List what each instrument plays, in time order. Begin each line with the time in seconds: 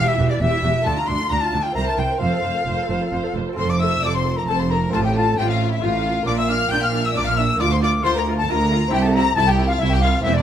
Already playing: lute E2 E4 C5
0.07 viola section E4, violin section E5, flute E5
0.18 double bass section E1, cello section E2, lute E2, viola section G4
0.30 viola section E4, violin section D5, flute D5
0.41 double bass section E1, cello section E2, lute E2, viola section G4, violin section E5, flute E5
0.54 viola section E4
0.63 double bass section E1, cello section E2, lute E2, viola section G4
0.75 viola section E4
0.82 double bass section D2, lute A3 F4 A4, violin section A5
0.86 cello section D2, lute D2, viola section D4, flute A5
0.97 viola section F4, violin section A#5, flute A#5
1.08 double bass section D2, cello section D2, lute D2, viola section D4, violin section C6, flute C6
1.20 viola section F4
1.30 double bass section D2, lute D2, cello section D2, viola section D4, violin section A#5, flute A#5
1.41 viola section F4, flute A5, violin section A5
1.53 double bass section D2, lute D2, cello section D2, viola section D4
1.63 viola section F4, violin section G5, flute G5
1.72 double bass section C2, cello section C2, lute C4 E4 A#4, viola section C5, flute A#5, violin section A#5
1.87 viola section A#4, flute A5, violin section A5
1.98 double bass section C2, cello section C2, viola section C5, violin section G5, flute G5
2.10 viola section A#4
2.18 double bass section F1, cello section F2, lute C4 F4 A4, viola section C5, violin section F5
2.22 lute F2, flute F5
2.33 viola section A4
2.44 double bass section F1, cello section F2, lute F2, viola section C5
2.56 viola section A4
2.66 double bass section F1, lute F2, cello section F2, viola section C5
2.79 viola section A4
2.89 double bass section F1, cello section F2, lute F2, viola section C5
3.02 viola section A4
3.12 double bass section F1, lute F2, cello section F2, viola section C5
3.25 viola section A4
3.35 double bass section F1, lute F2, cello section F2, viola section C5
3.47 viola section A4
3.53 lute C4 F4 A4
3.57 double bass section F1, lute F2, cello section F2, viola section A4, violin section C5 C6, flute C6
3.69 violin section D5 D6, flute D6
3.81 viola section A4, violin section E5 E6, flute E6
4.02 double bass section F1, lute F2, cello section F2, viola section A4, violin section D5 D6, flute D6
4.13 violin section C5 C6, flute C6
4.26 viola section A4
4.37 violin section A#4 A#5, flute A#5
4.47 double bass section F1, cello section F2, lute F2, violin section A4 A5, viola section A4, flute A5
4.59 violin section C5 C6, flute C6
4.70 viola section A4, violin section A#4 A#5, flute A#5
4.89 cello section A2, lute C4 F4 A4, violin section A4 A5, flute A5
4.94 double bass section A1, lute A2, viola section F4
5.04 violin section G4 G5, flute G5
5.15 viola section F4, violin section A4 A5, flute A5
5.37 double bass section A1, cello section A2, lute A2, viola section F4, violin section G4 G5, flute G5
5.49 violin section F4 F5, flute F5
5.60 viola section F4
5.71 violin section E4 E5, flute E5
5.82 double bass section A1, cello section A2, lute A2, violin section F4 F5, viola section F4, flute F5
6.04 viola section F4
6.23 cello section A#2, lute A#3 F4 D5, viola section D4, flute D6
6.27 double bass section A#1, lute A#2, violin section D5 D6
6.38 violin section E5 E6, flute E6
6.49 viola section D4, violin section F5 F6, flute F6
6.71 double bass section A#1, cello section A#2, lute A#2, viola section D4, violin section G5 G6, flute G6
6.82 violin section F5 F6, flute F6
6.94 viola section D4
7.05 violin section E5 E6, flute E6
7.15 double bass section A#1, cello section A#2, lute A#2, viola section D4, violin section D5 D6, flute D6
7.26 violin section F5 F6, flute F6
7.37 viola section D4, violin section E5 E6, flute E6
7.56 cello section D2, lute A#3 F4 D5, viola section F4, violin section D5
7.60 lute D2, double bass section D2, violin section D6, flute D6
7.70 violin section C5 C6, flute C6
7.81 viola section F4, violin section D5 D6, flute D6
8.04 lute D2, double bass section D2, cello section D2, viola section F4, violin section C5 C6, flute C6
8.15 violin section A#4 A#5, flute A#5
8.26 viola section F4
8.37 violin section A4 A5, flute A5
8.49 double bass section D2, lute D2, cello section D2, viola section F4, violin section A#4 A#5, flute A#5
8.70 viola section F4
8.88 lute C4 E4 G4, viola section E4, flute G5
8.93 double bass section C2, cello section C2, violin section G4 G5
9.02 violin section A4 A5, flute A5
9.14 viola section E4, violin section A#4 A#5, flute A#5
9.35 cello section C2, double bass section C2, viola section E4, violin section A4 A5, flute A5
9.46 violin section G4 G5, flute G5
9.58 viola section E4
9.67 violin section F4 F5, flute F5
9.78 double bass section C2, cello section C2, viola section E4, flute E5, violin section E5
9.83 violin section E4
9.89 violin section G4 G5, flute G5
10.00 viola section E4, violin section F4 F5, flute F5
10.20 lute C4 E4 G4, violin section E4 E5, flute E5
10.25 double bass section E1, lute E2, cello section E2, viola section C4
10.34 violin section D4 D5, flute D5